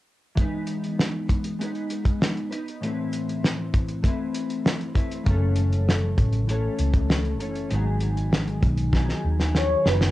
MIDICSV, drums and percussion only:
0, 0, Header, 1, 2, 480
1, 0, Start_track
1, 0, Key_signature, 4, "major"
1, 0, Tempo, 611621
1, 293, Time_signature, 4, 2, 24, 8
1, 7935, End_track
2, 0, Start_track
2, 0, Title_t, "Drums"
2, 293, Note_on_c, 9, 36, 82
2, 293, Note_on_c, 9, 42, 65
2, 371, Note_off_c, 9, 42, 0
2, 372, Note_off_c, 9, 36, 0
2, 525, Note_on_c, 9, 42, 60
2, 604, Note_off_c, 9, 42, 0
2, 657, Note_on_c, 9, 42, 38
2, 736, Note_off_c, 9, 42, 0
2, 780, Note_on_c, 9, 38, 77
2, 859, Note_off_c, 9, 38, 0
2, 1015, Note_on_c, 9, 36, 73
2, 1019, Note_on_c, 9, 42, 54
2, 1093, Note_off_c, 9, 36, 0
2, 1097, Note_off_c, 9, 42, 0
2, 1131, Note_on_c, 9, 42, 48
2, 1209, Note_off_c, 9, 42, 0
2, 1264, Note_on_c, 9, 42, 70
2, 1342, Note_off_c, 9, 42, 0
2, 1373, Note_on_c, 9, 42, 29
2, 1452, Note_off_c, 9, 42, 0
2, 1492, Note_on_c, 9, 42, 62
2, 1570, Note_off_c, 9, 42, 0
2, 1611, Note_on_c, 9, 36, 83
2, 1617, Note_on_c, 9, 42, 45
2, 1689, Note_off_c, 9, 36, 0
2, 1695, Note_off_c, 9, 42, 0
2, 1742, Note_on_c, 9, 38, 103
2, 1820, Note_off_c, 9, 38, 0
2, 1860, Note_on_c, 9, 42, 28
2, 1939, Note_off_c, 9, 42, 0
2, 1980, Note_on_c, 9, 42, 70
2, 2059, Note_off_c, 9, 42, 0
2, 2104, Note_on_c, 9, 42, 42
2, 2183, Note_off_c, 9, 42, 0
2, 2223, Note_on_c, 9, 42, 72
2, 2301, Note_off_c, 9, 42, 0
2, 2456, Note_on_c, 9, 42, 64
2, 2534, Note_off_c, 9, 42, 0
2, 2584, Note_on_c, 9, 42, 35
2, 2663, Note_off_c, 9, 42, 0
2, 2703, Note_on_c, 9, 38, 81
2, 2782, Note_off_c, 9, 38, 0
2, 2934, Note_on_c, 9, 36, 77
2, 2937, Note_on_c, 9, 42, 53
2, 3013, Note_off_c, 9, 36, 0
2, 3016, Note_off_c, 9, 42, 0
2, 3049, Note_on_c, 9, 42, 47
2, 3127, Note_off_c, 9, 42, 0
2, 3170, Note_on_c, 9, 36, 75
2, 3176, Note_on_c, 9, 42, 72
2, 3248, Note_off_c, 9, 36, 0
2, 3254, Note_off_c, 9, 42, 0
2, 3410, Note_on_c, 9, 42, 63
2, 3488, Note_off_c, 9, 42, 0
2, 3532, Note_on_c, 9, 42, 46
2, 3611, Note_off_c, 9, 42, 0
2, 3657, Note_on_c, 9, 38, 105
2, 3735, Note_off_c, 9, 38, 0
2, 3774, Note_on_c, 9, 42, 31
2, 3852, Note_off_c, 9, 42, 0
2, 3888, Note_on_c, 9, 36, 78
2, 3897, Note_on_c, 9, 42, 70
2, 3967, Note_off_c, 9, 36, 0
2, 3975, Note_off_c, 9, 42, 0
2, 4014, Note_on_c, 9, 42, 47
2, 4092, Note_off_c, 9, 42, 0
2, 4131, Note_on_c, 9, 36, 88
2, 4131, Note_on_c, 9, 42, 65
2, 4209, Note_off_c, 9, 42, 0
2, 4210, Note_off_c, 9, 36, 0
2, 4361, Note_on_c, 9, 42, 67
2, 4439, Note_off_c, 9, 42, 0
2, 4493, Note_on_c, 9, 42, 39
2, 4572, Note_off_c, 9, 42, 0
2, 4620, Note_on_c, 9, 38, 80
2, 4699, Note_off_c, 9, 38, 0
2, 4849, Note_on_c, 9, 36, 80
2, 4851, Note_on_c, 9, 42, 58
2, 4928, Note_off_c, 9, 36, 0
2, 4930, Note_off_c, 9, 42, 0
2, 4965, Note_on_c, 9, 42, 46
2, 5043, Note_off_c, 9, 42, 0
2, 5093, Note_on_c, 9, 42, 71
2, 5171, Note_off_c, 9, 42, 0
2, 5325, Note_on_c, 9, 42, 65
2, 5404, Note_off_c, 9, 42, 0
2, 5443, Note_on_c, 9, 36, 86
2, 5444, Note_on_c, 9, 42, 50
2, 5521, Note_off_c, 9, 36, 0
2, 5523, Note_off_c, 9, 42, 0
2, 5572, Note_on_c, 9, 38, 110
2, 5650, Note_off_c, 9, 38, 0
2, 5688, Note_on_c, 9, 42, 29
2, 5767, Note_off_c, 9, 42, 0
2, 5810, Note_on_c, 9, 42, 63
2, 5889, Note_off_c, 9, 42, 0
2, 5928, Note_on_c, 9, 42, 46
2, 6007, Note_off_c, 9, 42, 0
2, 6047, Note_on_c, 9, 42, 68
2, 6125, Note_off_c, 9, 42, 0
2, 6281, Note_on_c, 9, 42, 66
2, 6360, Note_off_c, 9, 42, 0
2, 6413, Note_on_c, 9, 42, 38
2, 6491, Note_off_c, 9, 42, 0
2, 6535, Note_on_c, 9, 38, 87
2, 6613, Note_off_c, 9, 38, 0
2, 6650, Note_on_c, 9, 42, 33
2, 6729, Note_off_c, 9, 42, 0
2, 6769, Note_on_c, 9, 36, 83
2, 6769, Note_on_c, 9, 42, 53
2, 6847, Note_off_c, 9, 42, 0
2, 6848, Note_off_c, 9, 36, 0
2, 6886, Note_on_c, 9, 42, 46
2, 6964, Note_off_c, 9, 42, 0
2, 7007, Note_on_c, 9, 36, 75
2, 7012, Note_on_c, 9, 38, 47
2, 7086, Note_off_c, 9, 36, 0
2, 7091, Note_off_c, 9, 38, 0
2, 7133, Note_on_c, 9, 38, 42
2, 7212, Note_off_c, 9, 38, 0
2, 7374, Note_on_c, 9, 38, 55
2, 7452, Note_off_c, 9, 38, 0
2, 7492, Note_on_c, 9, 38, 72
2, 7571, Note_off_c, 9, 38, 0
2, 7735, Note_on_c, 9, 38, 72
2, 7814, Note_off_c, 9, 38, 0
2, 7855, Note_on_c, 9, 38, 71
2, 7933, Note_off_c, 9, 38, 0
2, 7935, End_track
0, 0, End_of_file